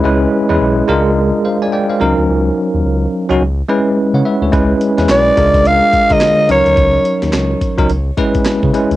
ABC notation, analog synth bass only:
X:1
M:4/4
L:1/16
Q:"Swing 16ths" 1/4=107
K:D#phr
V:1 name="Analog synth bass" clef=bass
C,,2 z E,, B,,,2 C,,4 z4 C,, =D,, | C,,2 z D,, C,,2 z C,, C,,2 z3 C, z =D,, | C,,2 z E,, B,,,2 C,,4 z4 C,, =D,, | C,,2 z D,, C,,2 z C,, C,,2 z3 C, z =D,, |]